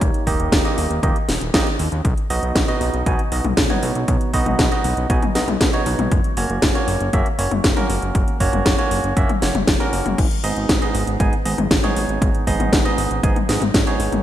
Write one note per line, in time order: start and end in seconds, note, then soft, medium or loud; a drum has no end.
0.00 0.11 D#1 loud
0.00 0.24 D#3 medium
0.00 0.24 A#3 medium
0.00 0.24 D#4 medium
0.00 0.24 G4 medium
0.00 0.24 C#5 loud
0.00 kick loud
0.00 closed hi-hat medium
0.14 closed hi-hat soft
0.27 0.36 D#1 medium
0.27 0.62 D#3 medium
0.27 0.62 A#3 medium
0.27 0.62 D#4 medium
0.27 0.62 G4 medium
0.27 0.62 D#5 loud
0.27 kick medium
0.27 open hi-hat medium
0.40 0.49 D#1 medium
0.40 closed hi-hat soft
0.52 0.62 D#1 loud
0.52 kick loud
0.52 snare loud
0.52 closed hi-hat medium
0.65 1.00 D#3 medium
0.65 1.00 A#3 medium
0.65 1.00 D#4 medium
0.65 1.00 G4 medium
0.65 1.00 D#5 medium
0.65 closed hi-hat soft
0.78 0.87 D#1 medium
0.78 open hi-hat medium
0.90 1.00 D#1 medium
0.90 closed hi-hat soft
1.03 1.12 D#1 loud
1.03 1.16 D#3 medium
1.03 1.16 A#3 medium
1.03 1.16 D#4 medium
1.03 1.16 G4 medium
1.03 1.16 D#5 medium
1.03 kick loud
1.03 closed hi-hat medium
1.16 closed hi-hat soft
1.29 1.38 D#1 medium
1.29 snare medium
1.29 open hi-hat loud
1.41 1.51 D#1 medium
1.41 closed hi-hat soft
1.54 1.63 A#1 loud
1.54 1.67 D#3 loud
1.54 1.67 A#3 medium
1.54 1.67 D#4 medium
1.54 1.67 G4 medium
1.54 1.67 D#5 loud
1.54 kick loud
1.54 snare loud
1.54 closed hi-hat medium
1.67 closed hi-hat soft
1.79 1.89 D#2 medium
1.79 open hi-hat medium
1.92 2.01 D#2 medium
1.92 closed hi-hat soft
2.05 2.14 B1 loud
2.05 kick loud
2.05 closed hi-hat medium
2.17 closed hi-hat soft
2.30 2.40 B1 medium
2.30 2.65 B2 medium
2.30 2.65 B3 medium
2.30 2.65 D#4 medium
2.30 2.65 F#4 medium
2.30 2.65 D#5 loud
2.30 open hi-hat loud
2.43 2.52 B1 medium
2.43 closed hi-hat soft
2.56 2.65 B1 loud
2.56 kick loud
2.56 snare loud
2.56 closed hi-hat medium
2.68 3.03 B2 medium
2.68 3.03 B3 medium
2.68 3.03 D#4 medium
2.68 3.03 F#4 medium
2.68 3.03 D#5 medium
2.68 closed hi-hat soft
2.81 2.90 B1 loud
2.81 open hi-hat medium
2.94 3.03 B1 medium
2.94 closed hi-hat soft
3.06 3.16 B1 loud
3.06 3.20 B2 medium
3.06 3.20 B3 medium
3.06 3.20 D#4 medium
3.06 3.20 F#4 medium
3.06 3.20 G#5 medium
3.06 kick loud
3.06 closed hi-hat medium
3.19 closed hi-hat soft
3.32 3.41 B1 loud
3.32 3.45 B2 medium
3.32 3.45 B3 medium
3.32 3.45 D#4 medium
3.32 3.45 F#4 medium
3.32 3.45 D#5 medium
3.32 open hi-hat loud
3.45 3.54 B1 medium
3.45 closed hi-hat soft
3.45 high tom medium
3.57 3.67 B1 loud
3.57 kick loud
3.57 snare loud
3.57 closed hi-hat medium
3.70 4.31 B2 medium
3.70 4.31 B3 medium
3.70 4.31 D#4 medium
3.70 4.31 F#4 medium
3.70 4.31 C#5 loud
3.70 closed hi-hat soft
3.70 high tom medium
3.83 3.92 B1 medium
3.83 open hi-hat medium
3.95 4.05 B1 medium
3.95 closed hi-hat soft
4.08 4.17 B1 loud
4.08 kick loud
4.08 closed hi-hat medium
4.21 closed hi-hat soft
4.33 4.43 B1 medium
4.33 4.69 B2 medium
4.33 4.69 B3 medium
4.33 4.69 D#4 medium
4.33 4.69 F#4 medium
4.33 4.69 D#5 loud
4.33 kick medium
4.33 open hi-hat loud
4.46 4.56 B1 medium
4.46 closed hi-hat soft
4.46 high tom medium
4.59 4.68 B1 loud
4.59 kick loud
4.59 snare loud
4.59 closed hi-hat medium
4.72 5.07 B2 medium
4.72 5.07 B3 medium
4.72 5.07 D#4 medium
4.72 5.07 F#4 medium
4.72 5.07 D#5 medium
4.72 closed hi-hat soft
4.84 4.94 B1 medium
4.84 open hi-hat medium
4.97 5.06 B1 medium
4.97 closed hi-hat soft
5.10 5.19 B1 loud
5.10 5.23 B2 medium
5.10 5.23 B3 medium
5.10 5.23 D#4 medium
5.10 5.23 F#4 medium
5.10 5.23 G#5 medium
5.10 kick loud
5.10 closed hi-hat medium
5.22 closed hi-hat soft
5.22 high tom medium
5.35 5.45 B1 medium
5.35 5.49 B2 medium
5.35 5.49 B3 medium
5.35 5.49 D#4 medium
5.35 5.49 F#4 medium
5.35 5.49 D#5 medium
5.35 snare medium
5.35 open hi-hat loud
5.48 5.57 B1 medium
5.48 high tom medium
5.61 5.70 B1 loud
5.61 kick loud
5.61 snare loud
5.61 closed hi-hat medium
5.73 6.10 B2 medium
5.73 6.10 B3 medium
5.73 6.10 D#4 medium
5.73 6.10 F#4 medium
5.73 6.10 C#5 loud
5.73 closed hi-hat soft
5.86 5.95 B1 medium
5.86 open hi-hat medium
5.99 6.08 B1 medium
5.99 closed hi-hat soft
5.99 high tom medium
6.12 6.21 F#1 loud
6.12 kick loud
6.12 closed hi-hat medium
6.24 closed hi-hat soft
6.37 6.46 F#1 medium
6.37 6.72 A#3 medium
6.37 6.72 C#4 medium
6.37 6.72 F#4 medium
6.37 6.72 C#5 loud
6.37 open hi-hat loud
6.50 6.59 F#1 medium
6.50 closed hi-hat soft
6.62 6.72 F#1 loud
6.62 kick loud
6.62 snare loud
6.62 closed hi-hat medium
6.75 7.10 A#3 medium
6.75 7.10 C#4 medium
6.75 7.10 F#4 medium
6.75 7.10 C#5 medium
6.75 closed hi-hat soft
6.88 6.97 F#1 loud
6.88 open hi-hat loud
7.00 7.10 F#1 medium
7.00 closed hi-hat soft
7.13 7.23 F#1 loud
7.13 7.27 A#3 medium
7.13 7.27 C#4 medium
7.13 7.27 F#4 medium
7.13 7.27 E5 medium
7.13 kick loud
7.13 closed hi-hat medium
7.26 closed hi-hat soft
7.39 7.48 F#1 loud
7.39 7.52 A#3 medium
7.39 7.52 C#4 medium
7.39 7.52 F#4 medium
7.39 7.52 C#5 medium
7.39 open hi-hat loud
7.51 7.61 F#1 medium
7.51 closed hi-hat soft
7.51 high tom medium
7.64 7.73 F#1 loud
7.64 kick loud
7.64 snare loud
7.64 closed hi-hat medium
7.77 8.37 A#3 medium
7.77 8.37 C#4 medium
7.77 8.37 F#4 medium
7.77 8.37 A#4 loud
7.77 closed hi-hat soft
7.77 high tom medium
7.89 7.99 F#1 medium
7.89 open hi-hat medium
8.02 8.12 F#1 medium
8.02 closed hi-hat soft
8.15 8.24 F#1 loud
8.15 kick loud
8.15 closed hi-hat medium
8.28 closed hi-hat soft
8.40 8.50 F#1 medium
8.40 8.75 A#3 medium
8.40 8.75 C#4 medium
8.40 8.75 F#4 medium
8.40 8.75 C#5 loud
8.40 kick medium
8.40 open hi-hat loud
8.53 8.62 F#1 medium
8.53 closed hi-hat soft
8.53 high tom medium
8.66 8.75 F#1 loud
8.66 kick loud
8.66 snare loud
8.66 closed hi-hat medium
8.78 9.14 A#3 medium
8.78 9.14 C#4 medium
8.78 9.14 F#4 medium
8.78 9.14 C#5 medium
8.78 closed hi-hat soft
8.91 9.01 F#1 medium
8.91 open hi-hat loud
9.04 9.13 F#1 medium
9.04 closed hi-hat soft
9.17 9.26 F#1 loud
9.17 9.30 A#3 medium
9.17 9.30 C#4 medium
9.17 9.30 F#4 medium
9.17 9.30 E5 medium
9.17 kick loud
9.17 closed hi-hat medium
9.29 closed hi-hat soft
9.29 high tom medium
9.42 9.51 F#1 medium
9.42 9.55 A#3 medium
9.42 9.55 C#4 medium
9.42 9.55 F#4 medium
9.42 9.55 C#5 medium
9.42 snare medium
9.42 open hi-hat loud
9.55 9.64 F#1 medium
9.55 closed hi-hat soft
9.55 high tom medium
9.67 9.77 F#1 loud
9.67 kick loud
9.67 snare loud
9.67 closed hi-hat medium
9.80 10.17 A#3 medium
9.80 10.17 C#4 medium
9.80 10.17 F#4 medium
9.80 10.17 A#4 loud
9.80 closed hi-hat soft
9.93 10.02 F#1 medium
9.93 open hi-hat loud
10.06 10.15 F#1 medium
10.06 closed hi-hat soft
10.06 high tom medium
10.18 10.28 G#1 loud
10.18 kick loud
10.18 closed hi-hat loud
10.18 crash medium
10.31 closed hi-hat soft
10.44 10.53 G#1 medium
10.44 10.79 G#2 medium
10.44 10.79 B3 medium
10.44 10.79 D#4 medium
10.44 10.79 G#4 medium
10.44 10.79 D#5 loud
10.44 open hi-hat loud
10.56 10.66 G#1 medium
10.56 closed hi-hat soft
10.69 10.78 G#1 loud
10.69 kick loud
10.69 snare loud
10.69 closed hi-hat medium
10.82 11.17 G#2 medium
10.82 11.17 B3 medium
10.82 11.17 D#4 medium
10.82 11.17 G#4 medium
10.82 11.17 D#5 medium
10.82 closed hi-hat soft
10.95 11.04 G#1 loud
10.95 open hi-hat medium
11.07 11.17 G#1 medium
11.07 closed hi-hat soft
11.20 11.29 G#1 loud
11.20 11.33 G#2 medium
11.20 11.33 B3 medium
11.20 11.33 D#4 medium
11.20 11.33 G#4 medium
11.20 11.33 G#5 medium
11.20 kick loud
11.20 closed hi-hat medium
11.33 closed hi-hat soft
11.45 11.55 G#1 medium
11.45 11.59 G#2 medium
11.45 11.59 B3 medium
11.45 11.59 D#4 medium
11.45 11.59 G#4 medium
11.45 11.59 D#5 medium
11.45 open hi-hat loud
11.58 11.68 G#1 medium
11.58 closed hi-hat soft
11.58 high tom medium
11.71 11.80 G#1 loud
11.71 kick loud
11.71 snare loud
11.71 closed hi-hat loud
11.84 12.44 G#2 medium
11.84 12.44 B3 medium
11.84 12.44 D#4 medium
11.84 12.44 G#4 medium
11.84 12.44 C#5 loud
11.84 closed hi-hat soft
11.84 high tom medium
11.96 12.06 G#1 medium
11.96 open hi-hat loud
12.09 12.18 G#1 medium
12.09 closed hi-hat soft
12.22 12.31 G#1 loud
12.22 kick loud
12.22 closed hi-hat loud
12.35 closed hi-hat soft
12.47 12.56 G#1 medium
12.47 12.82 G#2 medium
12.47 12.82 B3 medium
12.47 12.82 D#4 medium
12.47 12.82 G#4 medium
12.47 12.82 D#5 loud
12.47 kick medium
12.47 open hi-hat loud
12.60 12.69 G#1 medium
12.60 closed hi-hat soft
12.60 high tom medium
12.73 12.82 G#1 loud
12.73 kick loud
12.73 snare loud
12.73 closed hi-hat medium
12.85 13.20 G#2 medium
12.85 13.20 B3 medium
12.85 13.20 D#4 medium
12.85 13.20 G#4 medium
12.85 13.20 D#5 medium
12.85 closed hi-hat soft
12.98 13.07 G#1 medium
12.98 open hi-hat loud
13.11 13.20 G#1 medium
13.11 closed hi-hat soft
13.23 13.33 G#1 loud
13.23 13.37 G#2 medium
13.23 13.37 B3 medium
13.23 13.37 D#4 medium
13.23 13.37 G#4 medium
13.23 13.37 G#5 medium
13.23 kick loud
13.23 closed hi-hat loud
13.36 closed hi-hat soft
13.36 high tom medium
13.49 13.58 G#1 medium
13.49 13.62 G#2 medium
13.49 13.62 B3 medium
13.49 13.62 D#4 medium
13.49 13.62 G#4 medium
13.49 13.62 D#5 medium
13.49 snare medium
13.49 open hi-hat loud
13.62 13.71 G#1 medium
13.62 closed hi-hat soft
13.62 high tom medium
13.74 13.84 G#1 loud
13.74 kick loud
13.74 snare loud
13.74 closed hi-hat loud
13.87 14.23 G#2 medium
13.87 14.23 B3 medium
13.87 14.23 D#4 medium
13.87 14.23 G#4 medium
13.87 14.23 C#5 loud
13.87 closed hi-hat soft
14.00 14.09 G#1 medium
14.00 open hi-hat medium
14.12 14.22 G#1 medium
14.12 closed hi-hat soft
14.12 high tom medium